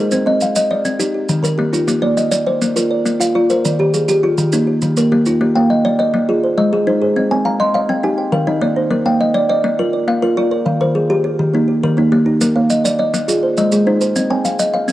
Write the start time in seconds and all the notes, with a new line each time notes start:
Already playing: D#4 G#4 A#4 C5 D#5
0.11 C4 C5, maracas
0.26 C4 D#5
0.41 F5, maracas
0.56 D#5, maracas
0.71 D5 D#5
0.85 C4, maracas
0.99 D#4 G4, maracas
1.14 G4
1.29 D#3, maracas
1.43 D#3 A#4, maracas
1.58 A#3 G4
1.73 D#4 F4, maracas
1.88 A#3 G4, maracas
2.02 A#3 D5
2.17 D#5, maracas
2.32 D5, maracas
2.47 C5 D5
2.62 A#3, maracas
2.76 F4 A#4, maracas
2.91 D5
3.06 A#3, maracas
3.20 F4 F5, maracas
3.35 F4 D5
3.50 A#4 C5, maracas
3.64 D#3 D5, maracas
3.79 D#3 G4
3.94 G#4, maracas
4.08 G4, maracas
4.23 F4 G4
4.38 D#3, maracas
4.52 A#3 D#4, maracas
4.67 G4
4.82 D#3, maracas
4.97 A#3 A#4, maracas
5.12 A#3 G4
5.26 D#4 F4, maracas
5.41 A#3 G4
5.55 A#3 F5 G5
5.70 D#5
5.85 D5
5.99 D5 D#5
6.14 A#3
6.29 F4 G#4
6.44 C5
6.58 G#3 D#5
6.72 G#3 G#4
6.87 D#4 C5
7.02 G#4 C5
7.16 C4 D#5
7.31 C4 G#5
7.45 F5 A#5
7.60 D#5 C6
7.74 D#5 F5
7.89 C4 G5
8.03 D#4 G4 G#5
8.18 G5
8.32 D#3 A#4 F5
8.47 D#3 D#4 D#5
8.61 A#3 D5
8.76 D#4 C5
8.90 A#3 A#4
9.05 A#3 F5 G5
9.21 D#5
9.34 D5
9.49 D5 D#5
9.64 A#3
9.79 F4 A#4
9.93 D5
10.08 A#3 F5
10.22 F4 A#4
10.37 F4 D5
10.51 A#4 D5
10.66 D#3 F5
10.81 D#3 A#4 C5
10.95 G#4
11.10 G4
11.24 G4
11.39 D#3
11.54 A#3 D#4
11.68 G4
11.83 D#3 A#4
11.97 A#3 D#4
12.12 A#3 G4
12.26 D#4 G4
12.41 A#3 A#4, maracas
12.56 A#3 F5
12.70 D#5, maracas
12.84 D5, maracas
12.99 D5 D#5
13.14 A#3, maracas
13.28 F4 G#4, maracas
13.43 C5
13.57 G#3 D#5, maracas
13.72 G#3 G#4, maracas
13.86 D#4 C5
14.01 G#4 C5, maracas
14.16 C4 D#5, maracas
14.30 C4 G5 G#5
14.45 F5, maracas
14.59 D#5, maracas
14.74 D#5 F5
14.88 C4, maracas